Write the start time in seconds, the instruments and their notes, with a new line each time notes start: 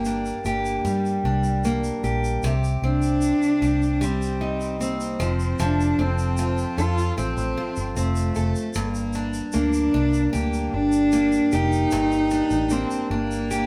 Already playing: fingered electric bass G1, steel-string acoustic guitar G2 G3 A#3 G4, cello A#3
0.05 steel-string acoustic guitar D4, shaker
0.26 shaker
0.45 fingered electric bass G1, cello A#3, steel-string acoustic guitar G4, shaker
0.65 shaker
0.85 fingered electric bass G2, steel-string acoustic guitar G3, cello G3, shaker
1.05 shaker
1.24 fingered electric bass C2, steel-string acoustic guitar D4
1.44 shaker
1.64 steel-string acoustic guitar A#3, shaker
1.84 shaker
2.04 fingered electric bass A#1, steel-string acoustic guitar G4, shaker
2.24 shaker
2.43 fingered electric bass C2, steel-string acoustic guitar C3 G4, shaker
2.64 shaker
2.82 fingered electric bass C2, steel-string acoustic guitar C4, cello D4
3.02 shaker
3.21 shaker
3.42 shaker
3.62 fingered electric bass C2, steel-string acoustic guitar G4, shaker
3.82 shaker
4.01 steel-string acoustic guitar G3, cello C4, shaker
4.22 shaker
4.41 steel-string acoustic guitar D#4
4.61 shaker
4.81 cello A#3, steel-string acoustic guitar C4, shaker
5.01 shaker
5.20 fingered electric bass F1, steel-string acoustic guitar F3, cello C4, shaker
5.40 shaker
5.59 fingered electric bass F1, steel-string acoustic guitar F3 A4, cello D4, shaker
5.81 shaker
5.98 fingered electric bass F1, steel-string acoustic guitar C4, cello C4
6.18 shaker
6.37 steel-string acoustic guitar F4, shaker
6.58 shaker
6.78 fingered electric bass F2, cello F4, steel-string acoustic guitar A4, shaker
6.98 shaker
7.18 fingered electric bass A1, steel-string acoustic guitar C4, cello C4, shaker
7.37 fingered electric bass A1, shaker
7.57 steel-string acoustic guitar F4
7.76 fingered electric bass G1, shaker
7.96 fingered electric bass F1, cello A3, steel-string acoustic guitar C4, shaker
8.16 shaker
8.35 fingered electric bass F1, steel-string acoustic guitar A4, shaker
8.55 shaker
8.74 fingered electric bass G1, steel-string acoustic guitar G2, cello A#3, shaker
8.95 shaker
9.13 steel-string acoustic guitar D4, shaker
9.34 shaker
9.52 fingered electric bass D2, steel-string acoustic guitar A#3, cello D4, shaker
9.73 shaker
9.94 fingered electric bass C2, steel-string acoustic guitar D4
10.13 shaker
10.33 fingered electric bass D2, cello A#3, steel-string acoustic guitar G4, shaker
10.53 shaker
10.74 fingered electric bass G1, cello D4
10.92 shaker
11.12 steel-string acoustic guitar A#3, shaker
11.32 shaker
11.52 fingered electric bass F1, cello D#4, steel-string acoustic guitar G4, shaker
11.72 shaker
11.91 fingered electric bass G1, steel-string acoustic guitar G2, shaker
12.12 shaker
12.30 steel-string acoustic guitar D4, shaker
12.50 fingered electric bass A1, shaker
12.70 steel-string acoustic guitar A#3, cello C4, shaker
12.91 shaker
13.10 fingered electric bass G1, cello A#3, steel-string acoustic guitar D4
13.31 shaker
13.51 steel-string acoustic guitar G4, shaker